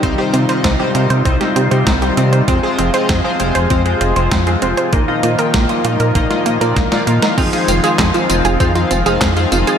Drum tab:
CC |----------------|----------------|----------------|x---------------|
HH |x-xxx-xxxxxxxxxx|x-xxx-xxxxxxxxxx|x-xxxxxxxxxxxxxx|xxxxxxxxxxxxxxxx|
TB |----------------|----------------|----------------|xxxxxxxxxxxxxxxx|
CP |----------------|----------------|----------------|----x-------x---|
SD |----o----o--o---|----o-------o---|----o----o--oo-o|----o-------o---|
BD |o---o---o---o---|o---o---o---o---|o---o---o---o---|o---o---o---o---|